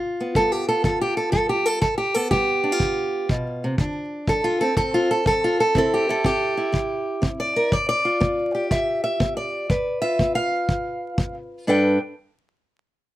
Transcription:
Already playing: steel-string acoustic guitar G2 F4
0.21 steel-string acoustic guitar B3
0.35 steel-string acoustic guitar G3 A4, kick
0.52 steel-string acoustic guitar G4
0.69 steel-string acoustic guitar F4 A4
0.84 steel-string acoustic guitar D3 A4, kick
1.01 steel-string acoustic guitar G4
1.17 steel-string acoustic guitar A4
1.32 steel-string acoustic guitar G3 A4, kick
1.49 steel-string acoustic guitar G4
1.66 steel-string acoustic guitar A4
1.81 steel-string acoustic guitar G2 A4, kick
1.98 steel-string acoustic guitar G4
2.14 steel-string acoustic guitar B3 A4
2.31 steel-string acoustic guitar G3 G4, kick
2.63 steel-string acoustic guitar D4
2.72 steel-string acoustic guitar F4
2.80 steel-string acoustic guitar D3, kick
3.29 steel-string acoustic guitar B2, kick
3.64 steel-string acoustic guitar C3
3.78 steel-string acoustic guitar D3 D4, kick
4.27 steel-string acoustic guitar F#3 A4, kick
4.44 steel-string acoustic guitar F4
4.61 steel-string acoustic guitar C4 A4
4.77 steel-string acoustic guitar A2 A4, kick
4.94 steel-string acoustic guitar F4
5.11 steel-string acoustic guitar A4
5.26 steel-string acoustic guitar F#3 A4, kick
5.44 steel-string acoustic guitar F4
5.60 steel-string acoustic guitar A4
5.75 steel-string acoustic guitar C3 C4 E4 A4, kick
5.94 steel-string acoustic guitar G4
6.09 steel-string acoustic guitar E4 A4
6.24 steel-string acoustic guitar C4 G4, kick
6.57 steel-string acoustic guitar E4
6.72 steel-string acoustic guitar G2, kick
7.22 steel-string acoustic guitar C4, kick
7.40 steel-string acoustic guitar D5
7.56 steel-string acoustic guitar A#4
7.72 steel-string acoustic guitar G2 D5, kick
7.89 steel-string acoustic guitar D5
8.05 steel-string acoustic guitar F4
8.20 steel-string acoustic guitar B3, kick
8.55 steel-string acoustic guitar G4
8.71 steel-string acoustic guitar G2 E5, kick
9.04 steel-string acoustic guitar E5
9.20 steel-string acoustic guitar B3, kick
9.37 steel-string acoustic guitar D5
9.70 steel-string acoustic guitar G2 B4, kick
10.02 steel-string acoustic guitar F4 E5
10.19 steel-string acoustic guitar B3, kick
10.35 steel-string acoustic guitar F5
10.69 steel-string acoustic guitar G2, kick
11.18 steel-string acoustic guitar B3, kick
11.67 steel-string acoustic guitar G2 D4 A4 B4 G5

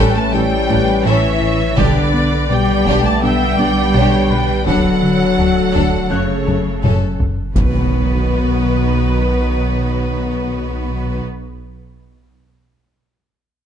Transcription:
Already playing: sub bass A1, trombone section E3 C#4, cello section G3, french horn section G3, violin section C#4 A4 G5, viola section B4, grand piano A5
0.00 analog synth bass A2, synth pluck A3
0.15 cello section A3, french horn section A3, violin section A5
0.32 double bass section A1, cello section G3, french horn section G3, analog synth bass A3, violin section C#4 A4 G5, synth pluck E4, viola section A4
0.68 double bass section A1, analog synth bass A3, violin section C#4 A4, synth pluck E4, viola section B4, taiko low
1.04 double bass section A1, analog synth bass A2, cello section E3, french horn section E3, synth pluck A3, violin section C#4 A4 E5, viola section C#5
1.41 analog synth bass A2, viola section C#5
1.76 double bass section B1, sub bass B1, analog synth bass B2, cello section D3, french horn section D3, trombone section D3 B3, synth pluck G3, violin section D4 G4 D5, viola section B4, taiko
2.14 analog synth bass B3
2.49 double bass section B1, analog synth bass B2, cello section G3, french horn section G3, synth pluck B3, violin section D4 G4 G5, viola section D5
2.86 double bass section B1, analog synth bass B2, synth pluck G3, violin section D4 G4, taiko
3.03 cello section A3, violin section A5
3.07 french horn section A3
3.22 double bass section B1, cello section G3, french horn section G3, analog synth bass B3, violin section D4 G4 G5, synth pluck D4, viola section E5
3.58 double bass section B1, analog synth bass B3, violin section D4 G4, synth pluck D4, viola section D5
3.94 double bass section B1, analog synth bass B2, synth pluck G3, violin section D4 G4, viola section C#5
4.30 analog synth bass B2, viola section B4, grand piano B5
4.66 sub bass D1, analog synth bass D2, double bass section D2, synth pluck D3, cello section F#3, french horn section F#3, violin section D4 A4 F#5, viola section A4, taiko
5.03 analog synth bass D3
5.38 analog synth bass D2, double bass section D2, synth pluck F#3, trombone section A3, violin section D4 A4
5.73 analog synth bass D2, double bass section D2, synth pluck D3, violin section D4 A4, taiko
6.09 sub bass F#1, double bass section F#2, cello section C#3, trombone section C#3, french horn section C#3, analog synth bass F#3, violin section C#4 A4 C#5, synth pluck C#4, viola section A4, grand piano F#6
6.47 double bass section F#2, analog synth bass F#3, violin section C#4 A4, synth pluck C#4, taiko low-mid
6.83 double bass section F#2, analog synth bass F#2, synth pluck F#3, violin section C#4 A4, taiko mid
7.19 analog synth bass F#2, taiko low
7.55 double bass section B1, sub bass B1, trombone section D#3 F#3, french horn section B3, cello section B3, viola section B3 D#4, violin section F#4 B4, taiko, impact

